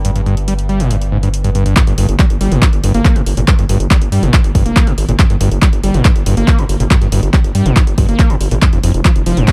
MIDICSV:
0, 0, Header, 1, 5, 480
1, 0, Start_track
1, 0, Key_signature, -2, "minor"
1, 0, Tempo, 428571
1, 56, Time_signature, 4, 2, 24, 8
1, 10666, End_track
2, 0, Start_track
2, 0, Title_t, "Synth drone"
2, 0, Program_c, 0, 95
2, 0, Note_on_c, 0, 43, 76
2, 0, Note_on_c, 0, 55, 78
2, 2024, Note_off_c, 0, 43, 0
2, 2024, Note_off_c, 0, 55, 0
2, 10666, End_track
3, 0, Start_track
3, 0, Title_t, "Acid bass"
3, 0, Program_c, 1, 38
3, 54, Note_on_c, 1, 43, 99
3, 121, Note_off_c, 1, 43, 0
3, 175, Note_on_c, 1, 43, 75
3, 242, Note_off_c, 1, 43, 0
3, 296, Note_on_c, 1, 43, 98
3, 396, Note_off_c, 1, 43, 0
3, 536, Note_on_c, 1, 55, 82
3, 602, Note_off_c, 1, 55, 0
3, 775, Note_on_c, 1, 55, 76
3, 897, Note_on_c, 1, 46, 75
3, 914, Note_off_c, 1, 55, 0
3, 1016, Note_on_c, 1, 43, 98
3, 1033, Note_off_c, 1, 46, 0
3, 1083, Note_off_c, 1, 43, 0
3, 1256, Note_on_c, 1, 44, 76
3, 1322, Note_off_c, 1, 44, 0
3, 1378, Note_on_c, 1, 43, 76
3, 1443, Note_off_c, 1, 43, 0
3, 1616, Note_on_c, 1, 43, 100
3, 1682, Note_off_c, 1, 43, 0
3, 1736, Note_on_c, 1, 43, 100
3, 1836, Note_off_c, 1, 43, 0
3, 1857, Note_on_c, 1, 43, 75
3, 1955, Note_off_c, 1, 43, 0
3, 1977, Note_on_c, 1, 43, 102
3, 2043, Note_off_c, 1, 43, 0
3, 2097, Note_on_c, 1, 43, 76
3, 2162, Note_off_c, 1, 43, 0
3, 2217, Note_on_c, 1, 43, 101
3, 2316, Note_off_c, 1, 43, 0
3, 2456, Note_on_c, 1, 55, 85
3, 2523, Note_off_c, 1, 55, 0
3, 2696, Note_on_c, 1, 55, 77
3, 2817, Note_on_c, 1, 46, 78
3, 2834, Note_off_c, 1, 55, 0
3, 2936, Note_on_c, 1, 43, 100
3, 2953, Note_off_c, 1, 46, 0
3, 3002, Note_off_c, 1, 43, 0
3, 3176, Note_on_c, 1, 43, 101
3, 3276, Note_off_c, 1, 43, 0
3, 3297, Note_on_c, 1, 58, 102
3, 3537, Note_on_c, 1, 46, 101
3, 3554, Note_off_c, 1, 58, 0
3, 3603, Note_off_c, 1, 46, 0
3, 3778, Note_on_c, 1, 46, 80
3, 3817, Note_off_c, 1, 46, 0
3, 3897, Note_on_c, 1, 43, 101
3, 3963, Note_off_c, 1, 43, 0
3, 4017, Note_on_c, 1, 43, 78
3, 4083, Note_off_c, 1, 43, 0
3, 4137, Note_on_c, 1, 43, 100
3, 4236, Note_off_c, 1, 43, 0
3, 4377, Note_on_c, 1, 55, 85
3, 4443, Note_off_c, 1, 55, 0
3, 4616, Note_on_c, 1, 55, 77
3, 4736, Note_on_c, 1, 46, 77
3, 4753, Note_off_c, 1, 55, 0
3, 4853, Note_on_c, 1, 43, 102
3, 4870, Note_off_c, 1, 46, 0
3, 4921, Note_off_c, 1, 43, 0
3, 5095, Note_on_c, 1, 43, 100
3, 5195, Note_off_c, 1, 43, 0
3, 5215, Note_on_c, 1, 58, 102
3, 5455, Note_on_c, 1, 46, 101
3, 5472, Note_off_c, 1, 58, 0
3, 5522, Note_off_c, 1, 46, 0
3, 5696, Note_on_c, 1, 46, 79
3, 5736, Note_off_c, 1, 46, 0
3, 5816, Note_on_c, 1, 43, 102
3, 5883, Note_off_c, 1, 43, 0
3, 5936, Note_on_c, 1, 43, 78
3, 6002, Note_off_c, 1, 43, 0
3, 6056, Note_on_c, 1, 43, 105
3, 6156, Note_off_c, 1, 43, 0
3, 6296, Note_on_c, 1, 55, 85
3, 6363, Note_off_c, 1, 55, 0
3, 6536, Note_on_c, 1, 55, 78
3, 6659, Note_on_c, 1, 46, 78
3, 6676, Note_off_c, 1, 55, 0
3, 6777, Note_on_c, 1, 43, 102
3, 6793, Note_off_c, 1, 46, 0
3, 6843, Note_off_c, 1, 43, 0
3, 7016, Note_on_c, 1, 43, 100
3, 7116, Note_off_c, 1, 43, 0
3, 7137, Note_on_c, 1, 58, 100
3, 7375, Note_on_c, 1, 46, 102
3, 7392, Note_off_c, 1, 58, 0
3, 7442, Note_off_c, 1, 46, 0
3, 7617, Note_on_c, 1, 46, 77
3, 7656, Note_off_c, 1, 46, 0
3, 7736, Note_on_c, 1, 43, 103
3, 7802, Note_off_c, 1, 43, 0
3, 7856, Note_on_c, 1, 43, 78
3, 7922, Note_off_c, 1, 43, 0
3, 7975, Note_on_c, 1, 43, 102
3, 8075, Note_off_c, 1, 43, 0
3, 8215, Note_on_c, 1, 55, 85
3, 8282, Note_off_c, 1, 55, 0
3, 8455, Note_on_c, 1, 55, 77
3, 8577, Note_on_c, 1, 46, 77
3, 8594, Note_off_c, 1, 55, 0
3, 8697, Note_on_c, 1, 43, 104
3, 8714, Note_off_c, 1, 46, 0
3, 8763, Note_off_c, 1, 43, 0
3, 8936, Note_on_c, 1, 43, 104
3, 9036, Note_off_c, 1, 43, 0
3, 9057, Note_on_c, 1, 58, 101
3, 9297, Note_on_c, 1, 46, 102
3, 9313, Note_off_c, 1, 58, 0
3, 9362, Note_off_c, 1, 46, 0
3, 9536, Note_on_c, 1, 46, 80
3, 9576, Note_off_c, 1, 46, 0
3, 9658, Note_on_c, 1, 41, 101
3, 9724, Note_off_c, 1, 41, 0
3, 9778, Note_on_c, 1, 41, 75
3, 9843, Note_off_c, 1, 41, 0
3, 9896, Note_on_c, 1, 41, 104
3, 9996, Note_off_c, 1, 41, 0
3, 10138, Note_on_c, 1, 53, 86
3, 10204, Note_off_c, 1, 53, 0
3, 10376, Note_on_c, 1, 53, 77
3, 10498, Note_on_c, 1, 44, 76
3, 10515, Note_off_c, 1, 53, 0
3, 10615, Note_on_c, 1, 41, 104
3, 10632, Note_off_c, 1, 44, 0
3, 10666, Note_off_c, 1, 41, 0
3, 10666, End_track
4, 0, Start_track
4, 0, Title_t, "Analog synth bass"
4, 0, Program_c, 2, 38
4, 0, Note_on_c, 2, 31, 88
4, 1953, Note_off_c, 2, 31, 0
4, 2098, Note_on_c, 2, 31, 87
4, 2175, Note_off_c, 2, 31, 0
4, 2217, Note_on_c, 2, 31, 100
4, 2295, Note_off_c, 2, 31, 0
4, 2338, Note_on_c, 2, 31, 95
4, 2415, Note_off_c, 2, 31, 0
4, 2578, Note_on_c, 2, 31, 86
4, 2655, Note_off_c, 2, 31, 0
4, 2698, Note_on_c, 2, 31, 101
4, 2776, Note_off_c, 2, 31, 0
4, 2818, Note_on_c, 2, 31, 95
4, 2895, Note_off_c, 2, 31, 0
4, 3058, Note_on_c, 2, 31, 87
4, 3135, Note_off_c, 2, 31, 0
4, 3178, Note_on_c, 2, 31, 102
4, 3255, Note_off_c, 2, 31, 0
4, 3298, Note_on_c, 2, 31, 91
4, 3375, Note_off_c, 2, 31, 0
4, 3538, Note_on_c, 2, 31, 90
4, 3615, Note_off_c, 2, 31, 0
4, 3657, Note_on_c, 2, 31, 99
4, 3735, Note_off_c, 2, 31, 0
4, 3777, Note_on_c, 2, 31, 91
4, 3855, Note_off_c, 2, 31, 0
4, 4017, Note_on_c, 2, 31, 87
4, 4095, Note_off_c, 2, 31, 0
4, 4136, Note_on_c, 2, 31, 102
4, 4214, Note_off_c, 2, 31, 0
4, 4255, Note_on_c, 2, 31, 92
4, 4333, Note_off_c, 2, 31, 0
4, 4496, Note_on_c, 2, 31, 89
4, 4574, Note_off_c, 2, 31, 0
4, 4615, Note_on_c, 2, 43, 101
4, 4694, Note_off_c, 2, 43, 0
4, 4736, Note_on_c, 2, 31, 97
4, 4814, Note_off_c, 2, 31, 0
4, 4976, Note_on_c, 2, 31, 90
4, 5054, Note_off_c, 2, 31, 0
4, 5096, Note_on_c, 2, 31, 101
4, 5175, Note_off_c, 2, 31, 0
4, 5217, Note_on_c, 2, 29, 91
4, 5294, Note_off_c, 2, 29, 0
4, 5457, Note_on_c, 2, 31, 89
4, 5534, Note_off_c, 2, 31, 0
4, 5577, Note_on_c, 2, 32, 100
4, 5655, Note_off_c, 2, 32, 0
4, 5697, Note_on_c, 2, 31, 91
4, 5775, Note_off_c, 2, 31, 0
4, 5937, Note_on_c, 2, 31, 88
4, 6014, Note_off_c, 2, 31, 0
4, 6057, Note_on_c, 2, 31, 98
4, 6135, Note_off_c, 2, 31, 0
4, 6177, Note_on_c, 2, 31, 92
4, 6254, Note_off_c, 2, 31, 0
4, 6416, Note_on_c, 2, 31, 89
4, 6494, Note_off_c, 2, 31, 0
4, 6536, Note_on_c, 2, 31, 100
4, 6615, Note_off_c, 2, 31, 0
4, 6657, Note_on_c, 2, 31, 95
4, 6734, Note_off_c, 2, 31, 0
4, 6896, Note_on_c, 2, 31, 88
4, 6974, Note_off_c, 2, 31, 0
4, 7015, Note_on_c, 2, 31, 100
4, 7094, Note_off_c, 2, 31, 0
4, 7136, Note_on_c, 2, 31, 92
4, 7214, Note_off_c, 2, 31, 0
4, 7376, Note_on_c, 2, 31, 86
4, 7454, Note_off_c, 2, 31, 0
4, 7495, Note_on_c, 2, 31, 102
4, 7574, Note_off_c, 2, 31, 0
4, 7616, Note_on_c, 2, 31, 90
4, 7694, Note_off_c, 2, 31, 0
4, 7857, Note_on_c, 2, 31, 90
4, 7934, Note_off_c, 2, 31, 0
4, 7975, Note_on_c, 2, 31, 97
4, 8054, Note_off_c, 2, 31, 0
4, 8096, Note_on_c, 2, 31, 93
4, 8174, Note_off_c, 2, 31, 0
4, 8336, Note_on_c, 2, 31, 86
4, 8414, Note_off_c, 2, 31, 0
4, 8456, Note_on_c, 2, 43, 97
4, 8535, Note_off_c, 2, 43, 0
4, 8576, Note_on_c, 2, 31, 94
4, 8654, Note_off_c, 2, 31, 0
4, 8816, Note_on_c, 2, 31, 87
4, 8894, Note_off_c, 2, 31, 0
4, 8937, Note_on_c, 2, 31, 104
4, 9015, Note_off_c, 2, 31, 0
4, 9056, Note_on_c, 2, 31, 90
4, 9134, Note_off_c, 2, 31, 0
4, 9296, Note_on_c, 2, 31, 87
4, 9374, Note_off_c, 2, 31, 0
4, 9416, Note_on_c, 2, 31, 103
4, 9495, Note_off_c, 2, 31, 0
4, 9538, Note_on_c, 2, 32, 93
4, 9615, Note_off_c, 2, 32, 0
4, 9777, Note_on_c, 2, 29, 89
4, 9854, Note_off_c, 2, 29, 0
4, 9898, Note_on_c, 2, 29, 99
4, 9975, Note_off_c, 2, 29, 0
4, 10018, Note_on_c, 2, 29, 94
4, 10095, Note_off_c, 2, 29, 0
4, 10258, Note_on_c, 2, 29, 88
4, 10335, Note_off_c, 2, 29, 0
4, 10375, Note_on_c, 2, 29, 97
4, 10454, Note_off_c, 2, 29, 0
4, 10496, Note_on_c, 2, 29, 95
4, 10574, Note_off_c, 2, 29, 0
4, 10666, End_track
5, 0, Start_track
5, 0, Title_t, "Drums"
5, 54, Note_on_c, 9, 42, 76
5, 166, Note_off_c, 9, 42, 0
5, 175, Note_on_c, 9, 42, 51
5, 287, Note_off_c, 9, 42, 0
5, 295, Note_on_c, 9, 42, 34
5, 407, Note_off_c, 9, 42, 0
5, 416, Note_on_c, 9, 42, 51
5, 528, Note_off_c, 9, 42, 0
5, 536, Note_on_c, 9, 42, 77
5, 648, Note_off_c, 9, 42, 0
5, 657, Note_on_c, 9, 42, 52
5, 769, Note_off_c, 9, 42, 0
5, 775, Note_on_c, 9, 42, 35
5, 887, Note_off_c, 9, 42, 0
5, 896, Note_on_c, 9, 42, 52
5, 1008, Note_off_c, 9, 42, 0
5, 1015, Note_on_c, 9, 42, 77
5, 1127, Note_off_c, 9, 42, 0
5, 1137, Note_on_c, 9, 42, 51
5, 1249, Note_off_c, 9, 42, 0
5, 1378, Note_on_c, 9, 42, 51
5, 1490, Note_off_c, 9, 42, 0
5, 1497, Note_on_c, 9, 42, 78
5, 1609, Note_off_c, 9, 42, 0
5, 1618, Note_on_c, 9, 42, 50
5, 1730, Note_off_c, 9, 42, 0
5, 1736, Note_on_c, 9, 42, 52
5, 1848, Note_off_c, 9, 42, 0
5, 1857, Note_on_c, 9, 42, 58
5, 1969, Note_off_c, 9, 42, 0
5, 1976, Note_on_c, 9, 39, 127
5, 1976, Note_on_c, 9, 42, 87
5, 1977, Note_on_c, 9, 36, 120
5, 2088, Note_off_c, 9, 39, 0
5, 2088, Note_off_c, 9, 42, 0
5, 2089, Note_off_c, 9, 36, 0
5, 2098, Note_on_c, 9, 42, 55
5, 2210, Note_off_c, 9, 42, 0
5, 2216, Note_on_c, 9, 46, 108
5, 2328, Note_off_c, 9, 46, 0
5, 2337, Note_on_c, 9, 42, 56
5, 2449, Note_off_c, 9, 42, 0
5, 2456, Note_on_c, 9, 39, 121
5, 2456, Note_on_c, 9, 42, 84
5, 2457, Note_on_c, 9, 36, 121
5, 2568, Note_off_c, 9, 39, 0
5, 2568, Note_off_c, 9, 42, 0
5, 2569, Note_off_c, 9, 36, 0
5, 2578, Note_on_c, 9, 42, 58
5, 2690, Note_off_c, 9, 42, 0
5, 2697, Note_on_c, 9, 46, 94
5, 2809, Note_off_c, 9, 46, 0
5, 2819, Note_on_c, 9, 42, 57
5, 2931, Note_off_c, 9, 42, 0
5, 2937, Note_on_c, 9, 36, 120
5, 2938, Note_on_c, 9, 39, 125
5, 2938, Note_on_c, 9, 42, 85
5, 3049, Note_off_c, 9, 36, 0
5, 3050, Note_off_c, 9, 39, 0
5, 3050, Note_off_c, 9, 42, 0
5, 3058, Note_on_c, 9, 42, 55
5, 3170, Note_off_c, 9, 42, 0
5, 3176, Note_on_c, 9, 46, 110
5, 3288, Note_off_c, 9, 46, 0
5, 3298, Note_on_c, 9, 42, 55
5, 3410, Note_off_c, 9, 42, 0
5, 3417, Note_on_c, 9, 36, 123
5, 3417, Note_on_c, 9, 39, 125
5, 3417, Note_on_c, 9, 42, 85
5, 3529, Note_off_c, 9, 36, 0
5, 3529, Note_off_c, 9, 39, 0
5, 3529, Note_off_c, 9, 42, 0
5, 3538, Note_on_c, 9, 42, 56
5, 3650, Note_off_c, 9, 42, 0
5, 3656, Note_on_c, 9, 46, 95
5, 3768, Note_off_c, 9, 46, 0
5, 3777, Note_on_c, 9, 42, 62
5, 3889, Note_off_c, 9, 42, 0
5, 3896, Note_on_c, 9, 39, 125
5, 3896, Note_on_c, 9, 42, 85
5, 3897, Note_on_c, 9, 36, 125
5, 4008, Note_off_c, 9, 39, 0
5, 4008, Note_off_c, 9, 42, 0
5, 4009, Note_off_c, 9, 36, 0
5, 4018, Note_on_c, 9, 42, 57
5, 4130, Note_off_c, 9, 42, 0
5, 4136, Note_on_c, 9, 46, 108
5, 4248, Note_off_c, 9, 46, 0
5, 4258, Note_on_c, 9, 42, 58
5, 4370, Note_off_c, 9, 42, 0
5, 4376, Note_on_c, 9, 36, 127
5, 4377, Note_on_c, 9, 39, 123
5, 4377, Note_on_c, 9, 42, 84
5, 4488, Note_off_c, 9, 36, 0
5, 4489, Note_off_c, 9, 39, 0
5, 4489, Note_off_c, 9, 42, 0
5, 4497, Note_on_c, 9, 42, 57
5, 4609, Note_off_c, 9, 42, 0
5, 4617, Note_on_c, 9, 46, 97
5, 4729, Note_off_c, 9, 46, 0
5, 4736, Note_on_c, 9, 42, 57
5, 4848, Note_off_c, 9, 42, 0
5, 4856, Note_on_c, 9, 36, 123
5, 4856, Note_on_c, 9, 39, 123
5, 4856, Note_on_c, 9, 42, 84
5, 4968, Note_off_c, 9, 36, 0
5, 4968, Note_off_c, 9, 39, 0
5, 4968, Note_off_c, 9, 42, 0
5, 4976, Note_on_c, 9, 42, 56
5, 5088, Note_off_c, 9, 42, 0
5, 5096, Note_on_c, 9, 36, 66
5, 5096, Note_on_c, 9, 46, 111
5, 5208, Note_off_c, 9, 36, 0
5, 5208, Note_off_c, 9, 46, 0
5, 5216, Note_on_c, 9, 42, 57
5, 5328, Note_off_c, 9, 42, 0
5, 5336, Note_on_c, 9, 36, 126
5, 5336, Note_on_c, 9, 39, 123
5, 5336, Note_on_c, 9, 42, 85
5, 5448, Note_off_c, 9, 36, 0
5, 5448, Note_off_c, 9, 39, 0
5, 5448, Note_off_c, 9, 42, 0
5, 5457, Note_on_c, 9, 42, 55
5, 5569, Note_off_c, 9, 42, 0
5, 5576, Note_on_c, 9, 46, 100
5, 5688, Note_off_c, 9, 46, 0
5, 5696, Note_on_c, 9, 42, 64
5, 5808, Note_off_c, 9, 42, 0
5, 5815, Note_on_c, 9, 39, 117
5, 5815, Note_on_c, 9, 42, 85
5, 5816, Note_on_c, 9, 36, 126
5, 5927, Note_off_c, 9, 39, 0
5, 5927, Note_off_c, 9, 42, 0
5, 5928, Note_off_c, 9, 36, 0
5, 5937, Note_on_c, 9, 42, 54
5, 6049, Note_off_c, 9, 42, 0
5, 6056, Note_on_c, 9, 46, 111
5, 6168, Note_off_c, 9, 46, 0
5, 6177, Note_on_c, 9, 42, 54
5, 6289, Note_off_c, 9, 42, 0
5, 6296, Note_on_c, 9, 36, 124
5, 6296, Note_on_c, 9, 39, 118
5, 6296, Note_on_c, 9, 42, 83
5, 6408, Note_off_c, 9, 36, 0
5, 6408, Note_off_c, 9, 39, 0
5, 6408, Note_off_c, 9, 42, 0
5, 6417, Note_on_c, 9, 42, 56
5, 6529, Note_off_c, 9, 42, 0
5, 6536, Note_on_c, 9, 46, 98
5, 6648, Note_off_c, 9, 46, 0
5, 6656, Note_on_c, 9, 42, 55
5, 6768, Note_off_c, 9, 42, 0
5, 6774, Note_on_c, 9, 39, 120
5, 6774, Note_on_c, 9, 42, 83
5, 6776, Note_on_c, 9, 36, 126
5, 6886, Note_off_c, 9, 39, 0
5, 6886, Note_off_c, 9, 42, 0
5, 6888, Note_off_c, 9, 36, 0
5, 6896, Note_on_c, 9, 42, 54
5, 7008, Note_off_c, 9, 42, 0
5, 7014, Note_on_c, 9, 46, 116
5, 7126, Note_off_c, 9, 46, 0
5, 7136, Note_on_c, 9, 42, 54
5, 7248, Note_off_c, 9, 42, 0
5, 7255, Note_on_c, 9, 39, 118
5, 7255, Note_on_c, 9, 42, 81
5, 7256, Note_on_c, 9, 36, 127
5, 7367, Note_off_c, 9, 39, 0
5, 7367, Note_off_c, 9, 42, 0
5, 7368, Note_off_c, 9, 36, 0
5, 7376, Note_on_c, 9, 42, 54
5, 7488, Note_off_c, 9, 42, 0
5, 7496, Note_on_c, 9, 46, 101
5, 7608, Note_off_c, 9, 46, 0
5, 7618, Note_on_c, 9, 42, 63
5, 7730, Note_off_c, 9, 42, 0
5, 7736, Note_on_c, 9, 36, 123
5, 7737, Note_on_c, 9, 39, 116
5, 7737, Note_on_c, 9, 42, 81
5, 7848, Note_off_c, 9, 36, 0
5, 7849, Note_off_c, 9, 39, 0
5, 7849, Note_off_c, 9, 42, 0
5, 7858, Note_on_c, 9, 42, 52
5, 7970, Note_off_c, 9, 42, 0
5, 7976, Note_on_c, 9, 46, 110
5, 8088, Note_off_c, 9, 46, 0
5, 8096, Note_on_c, 9, 42, 53
5, 8208, Note_off_c, 9, 42, 0
5, 8216, Note_on_c, 9, 36, 127
5, 8216, Note_on_c, 9, 39, 116
5, 8216, Note_on_c, 9, 42, 80
5, 8328, Note_off_c, 9, 36, 0
5, 8328, Note_off_c, 9, 39, 0
5, 8328, Note_off_c, 9, 42, 0
5, 8337, Note_on_c, 9, 42, 54
5, 8449, Note_off_c, 9, 42, 0
5, 8455, Note_on_c, 9, 46, 100
5, 8567, Note_off_c, 9, 46, 0
5, 8576, Note_on_c, 9, 42, 53
5, 8688, Note_off_c, 9, 42, 0
5, 8695, Note_on_c, 9, 39, 115
5, 8695, Note_on_c, 9, 42, 80
5, 8696, Note_on_c, 9, 36, 126
5, 8807, Note_off_c, 9, 39, 0
5, 8807, Note_off_c, 9, 42, 0
5, 8808, Note_off_c, 9, 36, 0
5, 8817, Note_on_c, 9, 42, 53
5, 8929, Note_off_c, 9, 42, 0
5, 8935, Note_on_c, 9, 46, 114
5, 8936, Note_on_c, 9, 36, 64
5, 9047, Note_off_c, 9, 46, 0
5, 9048, Note_off_c, 9, 36, 0
5, 9056, Note_on_c, 9, 42, 54
5, 9168, Note_off_c, 9, 42, 0
5, 9176, Note_on_c, 9, 39, 115
5, 9176, Note_on_c, 9, 42, 81
5, 9177, Note_on_c, 9, 36, 126
5, 9288, Note_off_c, 9, 39, 0
5, 9288, Note_off_c, 9, 42, 0
5, 9289, Note_off_c, 9, 36, 0
5, 9296, Note_on_c, 9, 42, 53
5, 9408, Note_off_c, 9, 42, 0
5, 9415, Note_on_c, 9, 46, 98
5, 9527, Note_off_c, 9, 46, 0
5, 9535, Note_on_c, 9, 42, 60
5, 9647, Note_off_c, 9, 42, 0
5, 9655, Note_on_c, 9, 39, 116
5, 9655, Note_on_c, 9, 42, 80
5, 9657, Note_on_c, 9, 36, 120
5, 9767, Note_off_c, 9, 39, 0
5, 9767, Note_off_c, 9, 42, 0
5, 9769, Note_off_c, 9, 36, 0
5, 9775, Note_on_c, 9, 42, 51
5, 9887, Note_off_c, 9, 42, 0
5, 9895, Note_on_c, 9, 46, 107
5, 10007, Note_off_c, 9, 46, 0
5, 10016, Note_on_c, 9, 42, 51
5, 10128, Note_off_c, 9, 42, 0
5, 10135, Note_on_c, 9, 39, 115
5, 10135, Note_on_c, 9, 42, 75
5, 10137, Note_on_c, 9, 36, 118
5, 10247, Note_off_c, 9, 39, 0
5, 10247, Note_off_c, 9, 42, 0
5, 10249, Note_off_c, 9, 36, 0
5, 10256, Note_on_c, 9, 42, 52
5, 10368, Note_off_c, 9, 42, 0
5, 10374, Note_on_c, 9, 46, 96
5, 10486, Note_off_c, 9, 46, 0
5, 10496, Note_on_c, 9, 42, 51
5, 10608, Note_off_c, 9, 42, 0
5, 10614, Note_on_c, 9, 39, 117
5, 10614, Note_on_c, 9, 42, 76
5, 10617, Note_on_c, 9, 36, 120
5, 10666, Note_off_c, 9, 36, 0
5, 10666, Note_off_c, 9, 39, 0
5, 10666, Note_off_c, 9, 42, 0
5, 10666, End_track
0, 0, End_of_file